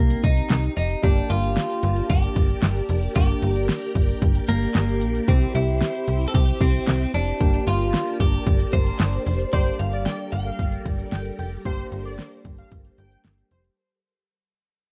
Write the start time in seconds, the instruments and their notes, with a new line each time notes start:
Already playing: fm bass C2, clean electric guitar A#3, synth keys C4 D#4 G4
0.10 closed hi-hat
0.24 fm bass C2, clean electric guitar D#4, kick, closed hi-hat
0.37 closed hi-hat
0.50 fm bass C2, snare, clap, closed hi-hat
0.64 closed hi-hat
0.77 fm bass F1, clean electric guitar D#4, open hi-hat
0.90 closed hi-hat
1.03 fm bass G1, synth keys A#3 D4 G4, clean electric guitar D4, string machine G4 A#4 D5 A5, kick, closed hi-hat
1.17 closed hi-hat
1.30 fm bass G1, clean electric guitar F4, closed hi-hat
1.44 closed hi-hat
1.56 snare, closed hi-hat
1.70 closed hi-hat
1.83 fm bass G1, closed hi-hat
1.96 closed hi-hat
2.09 fm bass G1, clean electric guitar G4, kick, closed hi-hat
2.23 closed hi-hat
2.36 fm bass G1, kick, closed hi-hat
2.49 closed hi-hat
2.62 fm bass G1, snare, clap, closed hi-hat
2.76 closed hi-hat
2.89 fm bass F1, closed hi-hat
3.02 closed hi-hat
3.16 fm bass G1, synth keys A#3 D4 G4, clean electric guitar G4, string machine G5, kick, closed hi-hat
3.29 closed hi-hat
3.42 fm bass G1, closed hi-hat
3.56 closed hi-hat
3.69 snare, closed hi-hat
3.82 closed hi-hat
3.95 fm bass G1, kick, closed hi-hat
4.09 closed hi-hat
4.22 fm bass G1, kick, closed hi-hat
4.35 closed hi-hat
4.48 fm bass G1, clean electric guitar A#3, closed hi-hat
4.62 closed hi-hat
4.75 fm bass G1, snare, clap, closed hi-hat
4.88 closed hi-hat
5.01 fm bass A#1, closed hi-hat
5.15 closed hi-hat
5.28 fm bass C2, synth keys C4 E4 G4, clean electric guitar C4, string machine C5 E5 C6, kick, closed hi-hat
5.41 closed hi-hat
5.55 fm bass C2, clean electric guitar E4, closed hi-hat
5.68 closed hi-hat
5.81 snare, closed hi-hat
5.94 closed hi-hat
6.08 fm bass C2, closed hi-hat
6.21 closed hi-hat
6.28 clean electric guitar A4
6.34 fm bass C2, clean electric guitar G4, kick, closed hi-hat
6.47 closed hi-hat
6.61 fm bass C2, synth keys C4 E4 G4, clean electric guitar C4, kick, closed hi-hat
6.74 closed hi-hat
6.87 fm bass C2, snare, clap, closed hi-hat
7.01 closed hi-hat
7.14 fm bass F1, clean electric guitar D4, closed hi-hat
7.27 closed hi-hat
7.40 fm bass G1, synth keys A#3 D4 G4, string machine A#4 D5 A5, kick, closed hi-hat
7.54 closed hi-hat
7.67 fm bass G1, clean electric guitar F4, closed hi-hat
7.81 closed hi-hat
7.94 snare, closed hi-hat
8.07 closed hi-hat
8.20 fm bass G1, clean electric guitar G4, kick, closed hi-hat
8.33 closed hi-hat
8.47 fm bass G1, kick, closed hi-hat
8.60 closed hi-hat
8.73 fm bass G1, clean electric guitar C5, kick, closed hi-hat
8.86 closed hi-hat
9.00 fm bass G1, snare, clap, closed hi-hat
9.13 closed hi-hat
9.26 fm bass F1, open hi-hat
9.39 closed hi-hat
9.53 fm bass G1, string machine G3 G4 A4 A#4 D5, synth keys A#3 D4 G4, analog polysynth C5, clean electric guitar D5, kick, closed hi-hat
9.66 closed hi-hat
9.79 fm bass G1, clean electric guitar F5, closed hi-hat
9.93 analog polysynth D5, closed hi-hat
10.06 analog polysynth D5, clean electric guitar G5, snare, closed hi-hat
10.19 closed hi-hat
10.32 fm bass G1, clean electric guitar G5, closed hi-hat
10.46 analog polysynth F5, closed hi-hat
10.59 fm bass G1, kick, closed hi-hat
10.72 closed hi-hat
10.85 fm bass G1, kick, closed hi-hat
10.99 closed hi-hat
11.12 fm bass G1, analog polysynth G5, snare, closed hi-hat
11.26 closed hi-hat
11.39 fm bass F1, analog polysynth G5, closed hi-hat
11.52 closed hi-hat
11.65 fm bass G1, synth keys A#3 D4 G4, analog polysynth C5, string machine C5, kick, closed hi-hat
11.79 closed hi-hat
11.92 fm bass G1, closed hi-hat
12.05 analog polysynth D5, closed hi-hat
12.18 analog polysynth D5, snare, closed hi-hat
12.32 closed hi-hat
12.45 fm bass G1, kick, closed hi-hat
12.58 analog polysynth F5, closed hi-hat
12.71 fm bass G1, kick, closed hi-hat
12.85 closed hi-hat
12.98 fm bass G1, analog polysynth G5, closed hi-hat
13.11 closed hi-hat
13.24 fm bass G1, snare, closed hi-hat
13.38 closed hi-hat
13.51 fm bass F1, analog polysynth C5, closed hi-hat
13.64 closed hi-hat